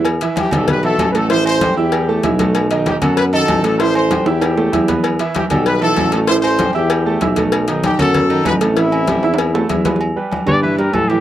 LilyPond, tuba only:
\new Staff \with { instrumentName = "Tuba" } { \clef bass \time 4/4 \key e \minor \tempo 4 = 193 e,8 r4 b,,4. a,,4~ | a,,4. e,4. b,,4~ | b,,4. fis,4. a,,4~ | a,,4. e,4. e,4~ |
e,8 r4 b,,4. a,,4~ | a,,4. e,4. b,,4~ | b,,4. fis,4. a,,4~ | a,,4. e,4. e,4~ |
e,8 r4 g,4. a,4 | }